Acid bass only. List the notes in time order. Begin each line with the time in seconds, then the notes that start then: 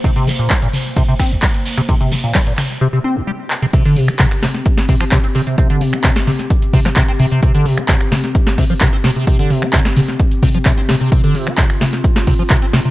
0.04 C3
0.16 C3
0.27 G3
0.39 A#2
0.50 G3
0.62 A#2
0.96 C3
1.08 C3
1.20 C4
1.31 C2
1.43 G3
1.78 C3
1.89 C3
2.01 C3
2.12 G3
2.24 A#2
2.35 G3
2.47 A#2
2.81 C3
2.93 C3
3.04 C4
3.16 C2
3.27 G3
3.62 C3
3.73 C3
3.85 D3
3.96 C3
4.08 C4
4.20 C3
4.43 C3
4.89 C3
5.01 F3
5.12 C3
5.24 C4
5.35 C3
5.47 C3
5.58 C3
5.70 D3
5.81 C3
5.93 C4
6.04 C3
6.27 C3
6.73 C3
6.85 F3
6.96 C3
7.08 C4
7.20 C3
7.32 C3
7.43 C3
7.55 D3
7.66 C3
7.78 C4
7.89 C3
8.12 C3
8.58 C3
8.70 F3
8.81 C3
8.93 C4
9.04 C3
9.16 C3
9.27 C3
9.39 D3
9.50 C3
9.62 C4
9.73 C3
9.96 C3
10.43 C3
10.55 F3
10.66 C3
10.78 C4
10.89 C3
11.01 C3
11.12 C3
11.24 D3
11.35 C3
11.47 C4
11.58 C3
11.81 C3
12.27 C3
12.39 F3
12.50 C3
12.62 C4
12.73 C3
12.85 C3